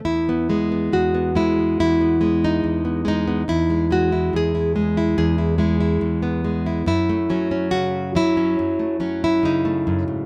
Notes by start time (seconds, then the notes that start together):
0.05 E2 E4
0.29 B3
0.50 G#3 B3
0.72 B3
0.92 E2 F#4
1.14 B3
1.35 G#3 E4
1.59 B3
1.80 E2 E4
2.01 B3
2.21 G#3 B3
2.44 D#4
2.64 E2
2.85 B3
3.05 G#3 D#4
3.27 B3
3.48 E2 E4
3.70 G#3
3.91 G#3 F#4
4.12 E4
4.33 E2 G#4
4.55 E4
4.76 G#3
4.97 E4
5.18 E2 G#4
5.38 E4
5.58 G#3 E4
5.80 E4
6.01 E2
6.23 B3
6.44 G#3
6.66 E4
6.86 F#2 E4
7.09 A3
7.30 F#3 C#4
7.51 C#4
7.71 C#3 F#4
8.15 F#3 E4
8.37 C#4
8.59 F#2
8.79 A3
9.00 F#3 C#4
9.24 E4
9.43 C#3 D#4
9.65 A3
9.87 F#2
10.08 G#2